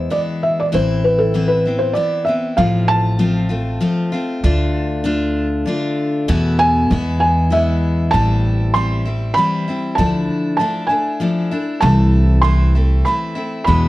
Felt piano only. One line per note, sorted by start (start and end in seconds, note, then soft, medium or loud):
0.00 0.12 C5 medium
0.11 0.18 D5 medium
0.43 0.59 E5 medium
0.60 0.65 D5 medium
0.75 1.06 C5 medium
1.04 1.20 B4 medium
1.19 1.51 A4 medium
1.48 1.81 B4 medium
1.79 1.94 C5 medium
1.93 2.24 D5 medium
2.25 2.58 E5 medium
2.57 2.64 F5 medium
2.88 4.39 A5 loud
6.59 7.19 G#5 loud
7.20 8.16 G#5 medium
7.53 8.10 E5 medium
8.11 8.76 A5 loud
8.74 9.38 C6 loud
9.34 9.93 B5 loud
9.95 10.55 A5 medium
10.57 10.90 A5 medium
10.86 11.84 G#5 medium
11.80 12.45 A5 loud
12.42 13.06 C6 medium
13.05 13.63 B5 medium
13.65 13.88 B5 medium